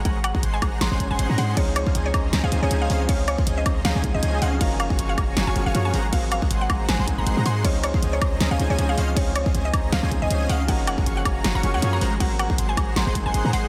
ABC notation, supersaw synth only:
X:1
M:4/4
L:1/16
Q:"Swing 16ths" 1/4=158
K:Db
V:1 name="Supersaw synth"
[A,Acgb] z2 [A,Acgb] [A,Acgc'] z [A,Acgb]2 [A,Acgb] [A,Acgc'] [A,Acga] [A,Acgc'] [A,Acgc'] [A,Acgb] [A,Acgc']2 | [DAcef] z2 [DAcef] [DAcea] z [DAceb]2 [DAceb] [DAcea] [DAcea] [DAcea] [DAcea]2 [DAcef] z | [DAcef] z2 [DAcef] [DAcea] z [DAceb]2 [DAceb] [DAcea] [DAcea] [DAcea] [DAcea]2 [DAcef] z | [Gdfab] z2 [Gdfab] [Gdfad'] z [Gdfab]2 [Gdfab] [Gdfad'] [Gdfad'] [Gdfad'] [Gdfad']2 [A,Acgb] z |
[A,Acg] z2 [A,Acgb] [A,Acgc'] z [A,Acgb]2 [A,Acgb] [A,Acgc'] [A,Acga] [A,Acgc'] [A,Acgc'] [A,Acgb] [A,Acgc']2 | [DAcf] z2 [DAcef] [DAcea] z [DAceb]2 [DAceb] [DAcea] [DAcea] [DAcea] [DAcea]2 [DAcef] z | [DAcef] z2 [DAcef] [DAcea] z [DAceb]2 [DAceb] [DAcea] [DAcea] [DAcea] [DAcea]2 [DAcef] z | [Gdfab] z2 [Gdfab] [Gdfad'] z [Gdfab]2 [Gdfab] [Gdfad'] [Gdfad'] [Gdfad'] [Gdfad']2 [A,Acgb] z |
[A,Acgb] z2 [A,Acgb] [A,Acgc'] z [A,Acgb]2 [A,Acgb] [A,Acgc'] [A,Acga] [A,Acgc'] [A,Acgc'] [A,Acgb] [A,Acgc']2 |]